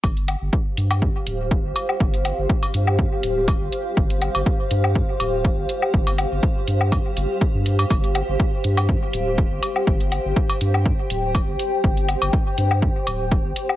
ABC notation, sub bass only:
X:1
M:4/4
L:1/16
Q:"Swing 16ths" 1/4=122
K:Cdor
V:1 name="Sub bass" clef=bass
G,,,3 G,,, z2 G,,3 z D,,,3 G,,, z2 | G,,,3 G,,, z2 G,,3 z D,,,3 G,,, z2 | G,,,3 G,,, z2 G,,3 z D,,,3 G,,, z2 | G,,,3 G,,, z2 G,,3 z G,,, z2 G,,3 |
G,,,3 G,,, z2 G,,3 z D,,,3 G,,, z2 | G,,,3 G,,, z2 G,,3 z D,,,3 G,,, z2 | G,,,3 G,,, z2 G,,3 z D,,,3 G,,, z2 |]